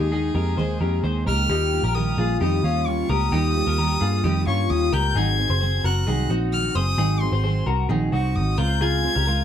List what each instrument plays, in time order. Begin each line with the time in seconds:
Already playing: steel-string acoustic guitar G#3 A#3 D#4, clean electric guitar D#4 G4, violin G#4
0.00 picked electric bass D#2
0.12 steel-string acoustic guitar D#3 G#3 A#3 D#4, clean electric guitar D#4 G#4
0.35 picked electric bass F2, steel-string acoustic guitar G#3 A#3 D#4, clean electric guitar G4 A#4
0.57 picked electric bass D#2, steel-string acoustic guitar D#3 G#3 A#3 D#4, clean electric guitar G#4 C5
0.81 picked electric bass F2, steel-string acoustic guitar G#3 A#3 D#4, clean electric guitar G4 A#4
1.03 picked electric bass D#2, steel-string acoustic guitar D#3 G#3 A#3 D#4, clean electric guitar G#4 C5
1.26 picked electric bass C#2, steel-string acoustic guitar G#3 A#3 D#4, clean electric guitar G4 A#4, violin F6
1.49 picked electric bass D#2, steel-string acoustic guitar D#3 G3 A#3 F4, clean electric guitar D#4 G4
1.73 steel-string acoustic guitar G3 A#3 F4
1.83 picked electric bass A#1, clean electric guitar G4 A#4
1.95 steel-string acoustic guitar D#3 G3 A#3 F4, clean electric guitar G4 A#4, violin D#6
2.17 picked electric bass A#1, steel-string acoustic guitar G3 A#3 F4, clean electric guitar F4 G#4
2.41 picked electric bass F2, steel-string acoustic guitar D#3 G3 A#3 F4, clean electric guitar D#4 G4, violin D#6
2.63 picked electric bass D#2, steel-string acoustic guitar G3 A#3 F4, clean electric guitar C#4 F4
2.86 steel-string acoustic guitar D#3 G3 A#3 F4, violin C#6
3.09 picked electric bass C#2, steel-string acoustic guitar G3 A#3 F4, clean electric guitar G4 A#4, violin D#6
3.32 picked electric bass D#2, steel-string acoustic guitar D#3 G3 A#3 F4, clean electric guitar D#4 G4
3.55 steel-string acoustic guitar G3 A#3 F4
3.67 picked electric bass D#2, clean electric guitar G4 A#4
3.78 steel-string acoustic guitar D#3 G3 A#3 F4, clean electric guitar G4 A#4
4.01 picked electric bass G2, steel-string acoustic guitar G3 A#3 F4, clean electric guitar F4 G#4
4.24 picked electric bass F2, steel-string acoustic guitar D#3 G3 A#3 F4, clean electric guitar D#4 G4
4.47 picked electric bass G2, steel-string acoustic guitar G3 A#3 F4, clean electric guitar C#4 F4, violin C#6
4.70 picked electric bass D#2, steel-string acoustic guitar D#3 G3 A#3 F4, violin D#6
4.93 picked electric bass C#2, steel-string acoustic guitar G3 A#3 F4, clean electric guitar G4 A#4, violin G6
5.15 picked electric bass G#1, steel-string acoustic guitar G#2 D#3 F#3 C4 F#4, clean electric guitar D#4 G#4, violin G#6
5.38 steel-string acoustic guitar F#3 C4 F#4
5.50 picked electric bass F#1, clean electric guitar G#4 C5
5.61 steel-string acoustic guitar D#3 F#3 C4 F#4, clean electric guitar G#4 C5
5.84 picked electric bass F#1, steel-string acoustic guitar F#3 C4 F#4, clean electric guitar F#4 A#4, violin F#6
6.07 picked electric bass C2, steel-string acoustic guitar G#2 D#3 F#3 C4 F#4, clean electric guitar D#4 G#4
6.29 picked electric bass A#1, steel-string acoustic guitar F#3 C4 F#4, clean electric guitar D#4 F#4
6.52 steel-string acoustic guitar D#3 F#3 C4 F#4, violin F6
6.75 picked electric bass F#1, steel-string acoustic guitar F#3 C4 F#4, clean electric guitar G#4 C5, violin D#6
6.97 picked electric bass G#1, steel-string acoustic guitar G#2 D#3 F#3 C4 F#4, clean electric guitar D#4 G#4
7.21 steel-string acoustic guitar F#3 C4 F#4, violin C6
7.32 picked electric bass G#1, clean electric guitar G#4 C5
7.44 steel-string acoustic guitar D#3 F#3 C4 F#4, clean electric guitar G#4 C5
7.66 picked electric bass C2, steel-string acoustic guitar F#3 C4 F#4, clean electric guitar F#4 A#4
7.89 picked electric bass A#1, steel-string acoustic guitar G#2 D#3 F#3 C4 F#4, clean electric guitar D#4 G#4
8.12 picked electric bass C2, steel-string acoustic guitar F#3 C4 F#4, clean electric guitar D#4 F#4, violin C#6
8.35 picked electric bass G#1, steel-string acoustic guitar D#3 F#3 C4 F#4, violin D#6
8.58 picked electric bass C#2, steel-string acoustic guitar G#3 C4 F4, clean electric guitar F4 A#4, violin G6
8.81 steel-string acoustic guitar C#3 G#3 C4 F4, clean electric guitar F4 G#4, violin G#6
9.03 steel-string acoustic guitar G#3 C4 F4
9.15 picked electric bass C#2, clean electric guitar G4 A#4
9.27 steel-string acoustic guitar C#3 G#3 C4 F4, clean electric guitar F4 A#4